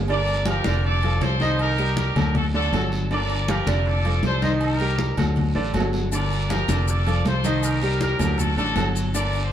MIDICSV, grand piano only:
0, 0, Header, 1, 2, 480
1, 0, Start_track
1, 0, Key_signature, -2, "minor"
1, 0, Tempo, 377358
1, 106, Time_signature, 4, 2, 24, 8
1, 12113, End_track
2, 0, Start_track
2, 0, Title_t, "Grand piano"
2, 0, Program_c, 0, 0
2, 119, Note_on_c, 0, 50, 86
2, 125, Note_on_c, 0, 62, 90
2, 129, Note_on_c, 0, 74, 92
2, 508, Note_off_c, 0, 50, 0
2, 511, Note_off_c, 0, 62, 0
2, 514, Note_off_c, 0, 74, 0
2, 603, Note_on_c, 0, 65, 71
2, 604, Note_on_c, 0, 53, 75
2, 606, Note_on_c, 0, 67, 74
2, 794, Note_off_c, 0, 53, 0
2, 794, Note_off_c, 0, 65, 0
2, 796, Note_off_c, 0, 67, 0
2, 855, Note_on_c, 0, 50, 75
2, 855, Note_on_c, 0, 74, 79
2, 856, Note_on_c, 0, 62, 82
2, 1238, Note_off_c, 0, 50, 0
2, 1238, Note_off_c, 0, 62, 0
2, 1238, Note_off_c, 0, 74, 0
2, 1324, Note_on_c, 0, 53, 71
2, 1326, Note_on_c, 0, 65, 79
2, 1332, Note_on_c, 0, 69, 77
2, 1711, Note_off_c, 0, 53, 0
2, 1713, Note_off_c, 0, 65, 0
2, 1716, Note_off_c, 0, 69, 0
2, 1795, Note_on_c, 0, 51, 86
2, 1799, Note_on_c, 0, 75, 97
2, 1802, Note_on_c, 0, 63, 96
2, 2186, Note_off_c, 0, 51, 0
2, 2189, Note_off_c, 0, 75, 0
2, 2190, Note_off_c, 0, 63, 0
2, 2273, Note_on_c, 0, 55, 77
2, 2278, Note_on_c, 0, 67, 80
2, 2280, Note_on_c, 0, 70, 77
2, 2665, Note_off_c, 0, 55, 0
2, 2668, Note_off_c, 0, 67, 0
2, 2669, Note_off_c, 0, 70, 0
2, 2762, Note_on_c, 0, 54, 67
2, 2769, Note_on_c, 0, 66, 70
2, 2771, Note_on_c, 0, 69, 75
2, 3151, Note_off_c, 0, 54, 0
2, 3155, Note_off_c, 0, 66, 0
2, 3156, Note_off_c, 0, 69, 0
2, 3234, Note_on_c, 0, 50, 97
2, 3244, Note_on_c, 0, 62, 84
2, 3244, Note_on_c, 0, 74, 89
2, 3429, Note_off_c, 0, 50, 0
2, 3435, Note_off_c, 0, 62, 0
2, 3435, Note_off_c, 0, 74, 0
2, 3484, Note_on_c, 0, 54, 83
2, 3487, Note_on_c, 0, 66, 84
2, 3489, Note_on_c, 0, 69, 89
2, 3872, Note_off_c, 0, 54, 0
2, 3874, Note_off_c, 0, 66, 0
2, 3875, Note_off_c, 0, 69, 0
2, 3957, Note_on_c, 0, 50, 89
2, 3964, Note_on_c, 0, 62, 92
2, 3969, Note_on_c, 0, 74, 90
2, 4348, Note_off_c, 0, 50, 0
2, 4352, Note_off_c, 0, 62, 0
2, 4355, Note_off_c, 0, 74, 0
2, 4435, Note_on_c, 0, 53, 68
2, 4440, Note_on_c, 0, 65, 74
2, 4441, Note_on_c, 0, 67, 82
2, 4630, Note_off_c, 0, 53, 0
2, 4633, Note_off_c, 0, 65, 0
2, 4633, Note_off_c, 0, 67, 0
2, 4678, Note_on_c, 0, 50, 88
2, 4680, Note_on_c, 0, 62, 89
2, 4681, Note_on_c, 0, 74, 89
2, 5068, Note_off_c, 0, 50, 0
2, 5070, Note_off_c, 0, 62, 0
2, 5070, Note_off_c, 0, 74, 0
2, 5158, Note_on_c, 0, 53, 79
2, 5158, Note_on_c, 0, 65, 72
2, 5168, Note_on_c, 0, 69, 77
2, 5548, Note_off_c, 0, 53, 0
2, 5548, Note_off_c, 0, 65, 0
2, 5554, Note_off_c, 0, 69, 0
2, 5624, Note_on_c, 0, 51, 89
2, 5632, Note_on_c, 0, 63, 95
2, 5634, Note_on_c, 0, 75, 90
2, 6020, Note_off_c, 0, 51, 0
2, 6025, Note_off_c, 0, 63, 0
2, 6026, Note_off_c, 0, 75, 0
2, 6111, Note_on_c, 0, 55, 77
2, 6115, Note_on_c, 0, 67, 88
2, 6117, Note_on_c, 0, 70, 83
2, 6504, Note_off_c, 0, 55, 0
2, 6506, Note_off_c, 0, 67, 0
2, 6508, Note_off_c, 0, 70, 0
2, 6592, Note_on_c, 0, 54, 72
2, 6597, Note_on_c, 0, 66, 70
2, 6604, Note_on_c, 0, 69, 69
2, 6985, Note_off_c, 0, 54, 0
2, 6987, Note_off_c, 0, 66, 0
2, 6991, Note_off_c, 0, 69, 0
2, 7061, Note_on_c, 0, 50, 94
2, 7066, Note_on_c, 0, 74, 86
2, 7067, Note_on_c, 0, 62, 97
2, 7261, Note_off_c, 0, 50, 0
2, 7264, Note_off_c, 0, 74, 0
2, 7265, Note_off_c, 0, 62, 0
2, 7311, Note_on_c, 0, 54, 80
2, 7317, Note_on_c, 0, 66, 81
2, 7321, Note_on_c, 0, 69, 81
2, 7703, Note_off_c, 0, 54, 0
2, 7707, Note_off_c, 0, 66, 0
2, 7710, Note_off_c, 0, 69, 0
2, 7795, Note_on_c, 0, 50, 84
2, 7796, Note_on_c, 0, 62, 84
2, 7799, Note_on_c, 0, 74, 85
2, 8186, Note_off_c, 0, 50, 0
2, 8187, Note_off_c, 0, 62, 0
2, 8188, Note_off_c, 0, 74, 0
2, 8267, Note_on_c, 0, 53, 75
2, 8276, Note_on_c, 0, 67, 75
2, 8277, Note_on_c, 0, 65, 71
2, 8465, Note_off_c, 0, 53, 0
2, 8469, Note_off_c, 0, 67, 0
2, 8470, Note_off_c, 0, 65, 0
2, 8518, Note_on_c, 0, 50, 88
2, 8520, Note_on_c, 0, 62, 79
2, 8525, Note_on_c, 0, 74, 87
2, 8907, Note_off_c, 0, 50, 0
2, 8908, Note_off_c, 0, 62, 0
2, 8911, Note_off_c, 0, 74, 0
2, 8992, Note_on_c, 0, 53, 77
2, 8996, Note_on_c, 0, 65, 77
2, 9001, Note_on_c, 0, 69, 79
2, 9384, Note_off_c, 0, 53, 0
2, 9386, Note_off_c, 0, 65, 0
2, 9389, Note_off_c, 0, 69, 0
2, 9472, Note_on_c, 0, 51, 101
2, 9479, Note_on_c, 0, 63, 90
2, 9483, Note_on_c, 0, 75, 95
2, 9864, Note_off_c, 0, 51, 0
2, 9868, Note_off_c, 0, 63, 0
2, 9870, Note_off_c, 0, 75, 0
2, 9955, Note_on_c, 0, 55, 84
2, 9957, Note_on_c, 0, 67, 88
2, 9962, Note_on_c, 0, 70, 79
2, 10345, Note_off_c, 0, 55, 0
2, 10346, Note_off_c, 0, 67, 0
2, 10349, Note_off_c, 0, 70, 0
2, 10433, Note_on_c, 0, 54, 79
2, 10436, Note_on_c, 0, 66, 76
2, 10442, Note_on_c, 0, 69, 70
2, 10824, Note_off_c, 0, 54, 0
2, 10825, Note_off_c, 0, 66, 0
2, 10829, Note_off_c, 0, 69, 0
2, 10911, Note_on_c, 0, 62, 93
2, 10912, Note_on_c, 0, 50, 85
2, 10914, Note_on_c, 0, 74, 86
2, 11106, Note_off_c, 0, 50, 0
2, 11106, Note_off_c, 0, 62, 0
2, 11107, Note_off_c, 0, 74, 0
2, 11159, Note_on_c, 0, 54, 87
2, 11159, Note_on_c, 0, 66, 81
2, 11163, Note_on_c, 0, 69, 80
2, 11546, Note_off_c, 0, 54, 0
2, 11546, Note_off_c, 0, 66, 0
2, 11549, Note_off_c, 0, 69, 0
2, 11634, Note_on_c, 0, 50, 89
2, 11636, Note_on_c, 0, 62, 93
2, 11638, Note_on_c, 0, 74, 92
2, 12023, Note_off_c, 0, 50, 0
2, 12024, Note_off_c, 0, 62, 0
2, 12026, Note_off_c, 0, 74, 0
2, 12113, End_track
0, 0, End_of_file